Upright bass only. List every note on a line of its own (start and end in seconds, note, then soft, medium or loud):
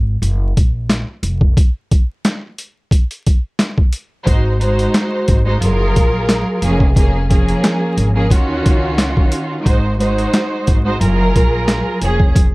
0.00 0.18 G#1 medium
0.22 0.51 F#1 loud
0.57 1.02 A#1 medium
1.23 1.52 F1 medium
4.27 4.85 G#1 loud
5.28 5.57 G#1 medium
5.61 5.91 F#1 loud
5.96 6.41 A#1 medium
6.62 7.50 F1 loud
7.97 8.27 G#1 loud
8.30 8.60 D#2 loud
8.66 9.11 C#2 medium
9.66 10.25 G#1 loud
10.68 10.97 G#1 medium
11.01 11.30 F#1 loud
11.36 11.81 A#1 medium
12.02 12.55 F1 medium